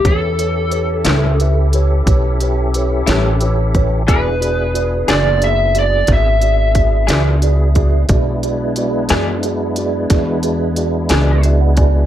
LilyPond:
<<
  \new Staff \with { instrumentName = "Lead electric guitar" } { \time 12/8 \key e \mixolydian \tempo 4. = 60 a'2. r2. | b'4. d''8 e''8 d''8 e''2.~ | e''1~ e''4 r4 | }
  \new Staff \with { instrumentName = "Tine electric piano" } { \time 12/8 \key e \mixolydian << { r1. | r1. | r1 r4 e''16 fis''16 gis''8 | } \\ { <g' b' cis''>8 <g' b' cis''>8 <g' b' cis''>8 <g' b' e''>8 <g' b' e''>8 <g' b' cis''>8 <g' b' cis''>8 <g' b' cis''>8 <g' b' cis''>8 <g' b' cis''>8 <g' b' cis''>8 <g' b' cis''>8 | <fis' gis' d''>8 <fis' gis' d''>8 <fis' gis' d''>8 <fis' gis' d''>8 <fis' gis' d''>8 <fis' gis' d''>8 <fis' gis' e''>8 <fis' gis' d''>8 <fis' gis' d''>8 <fis' gis' d''>8 <fis' gis' d''>8 <fis' gis' d''>8 | <fis' gis' d''>8 <fis' gis' d''>8 <fis' gis' d''>8 <fis' gis' d''>8 <fis' gis' d''>8 <fis' gis' d''>8 <fis' gis' d''>8 <fis' gis' d''>8 <fis' gis' d''>8 <fis' gis' d''>8 <fis' gis' d''>8 <fis' gis' d''>8 | } >> }
  \new Staff \with { instrumentName = "Tonewheel organ" } { \time 12/8 \key e \mixolydian <cis' e' g' a'>1. | <b d' e' gis'>1. | <gis b d' e'>1. | }
  \new Staff \with { instrumentName = "Clean electric guitar" } { \time 12/8 \key e \mixolydian r4. <a, g cis' e'>8 r2 r8 <a, g cis' e'>8 r4 | <e b d' gis'>8 r4 <e b d' gis'>8 r2 r8 <e b d' gis'>8 r4 | r4. <e b d' gis'>8 r2 r8 <e b d' gis'>8 r4 | }
  \new Staff \with { instrumentName = "Upright bass" } { \clef bass \time 12/8 \key e \mixolydian e,4. cis,4. b,,4. a,,4. | e,,4. fis,,4. gis,,4. cis,4. | b,,4. fis,4. e,4. cis,4. | }
  \new DrumStaff \with { instrumentName = "Drums" } \drummode { \time 12/8 <hh bd>8 hh8 hh8 <hh sn>8 hh8 hh8 <hh bd>8 hh8 hh8 <hh sn>8 hh8 <hh bd>8 | <hh bd>8 hh8 hh8 <hh sn>8 hh8 hh8 <hh bd sn>8 hh8 <hh bd>8 <hh sn>8 hh8 <hh bd>8 | <hh bd>8 hh8 hh8 <hh sn>8 hh8 hh8 <hh bd sn>8 hh8 hh8 <hh sn>8 hh8 <hh bd>8 | }
>>